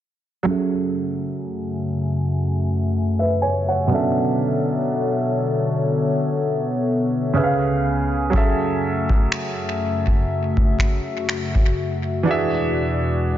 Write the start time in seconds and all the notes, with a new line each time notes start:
0.43 F#2 C#3 F#3 A3 C#4 G#4 E5 G#5
0.50 E5
3.19 B4 E5
3.42 C#5 G#5
3.68 C#5 F#5
3.87 B2 D3 F#3 B3 C#4 A4 C#5
3.92 D4 A4 E5
7.34 C#2 C#3 C#4 G#4 B4 E5 F5 G#5
7.44 F5
8.30 F#2 F#3 A3 C#4 G#4 E5, kick
8.36 A4 E5
9.10 kick
9.32 finger snap
10.07 kick
10.30 F#4
10.57 kick
10.79 finger snap, kick
11.29 finger snap
11.55 kick
12.23 E2 B2 E3 G#3 D4 F#4 D5
12.27 F#4 G#4 E5